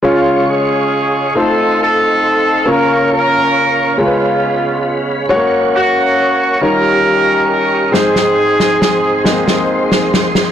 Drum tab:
SD |------------|------------|------------|oo-oo-oo-ooo|